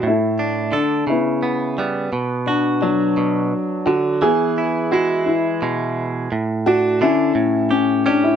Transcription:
<<
  \new Staff \with { instrumentName = "Grand piano" } { \time 6/8 \key a \mixolydian \tempo 4. = 57 e'4 d'8 e'4 r8 | r8 d'8 d'4. fis'8 | gis'4 fis'8 e'4 r8 | r8 fis'8 e'4 cis'8 d'16 e'16 | }
  \new Staff \with { instrumentName = "Grand piano" } { \time 6/8 \key a \mixolydian a4. b4. | r4 fis4. r8 | b4. r4. | r4 cis'4. r8 | }
  \new Staff \with { instrumentName = "Clean electric guitar" } { \clef bass \time 6/8 \key a \mixolydian << { r8 d'8 a'8 r8 b8 b8 | r8 fis'2~ fis'8 | r8 e'8 e'4 gis4 | r8 d'8 d'8 r8 g'8 g'8 | } \\ { a,4 d8 cis4 g8 | b,4 fis8 b,8 r8 d8 | e4 gis4 b,4 | a,4 d8 a,4 cis'8 | } >> }
>>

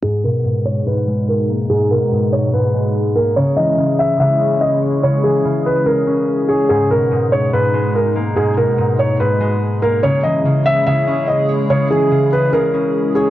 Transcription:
<<
  \new Staff \with { instrumentName = "Grand piano" } { \time 4/4 \key gis \minor \tempo 4 = 144 gis'8 ais'4 cis''8 b'4 ais'8 r8 | gis'8 ais'4 cis''8 b'4. ais'8 | cis''8 dis''4 e''8 e''4 dis''8 r8 | cis''8 gis'4 b'8 ais'4. gis'8 |
gis'8 ais'4 cis''8 b'4 ais'8 r8 | gis'8 ais'4 cis''8 b'4. ais'8 | cis''8 dis''4 e''8 e''4 dis''8 r8 | cis''8 gis'4 b'8 ais'4. gis'8 | }
  \new Staff \with { instrumentName = "Analog synth pad" } { \clef bass \time 4/4 \key gis \minor << { gis'1~ | gis'1~ | gis'1~ | gis'1~ |
gis'1~ | gis'1 | gis'1~ | gis'1 | } \\ { <b, gis dis'>1~ | <b, gis dis'>1 | <cis gis e'>1~ | <cis gis e'>1 |
<b, gis dis'>1~ | <b, gis dis'>1 | <cis gis e'>1~ | <cis gis e'>1 | } >> }
  \new Staff \with { instrumentName = "Harp" } { \clef bass \time 4/4 \key gis \minor gis,8 b,8 gis,4 gis,8 gis4 ais8 | gis,8 b,8 gis,4 gis,8 gis4 ais8 | cis8 e8 cis4 cis8 cis'4 cis''8 | cis8 e8 cis4 cis8 cis'4 cis''8 |
gis,8 b,8 gis,4 gis,8 gis4 ais8 | gis,8 b,8 gis,4 gis,8 gis4 ais8 | cis8 e8 cis4 cis8 cis'4 cis''8 | cis8 e8 cis4 cis8 cis'4 cis''8 | }
>>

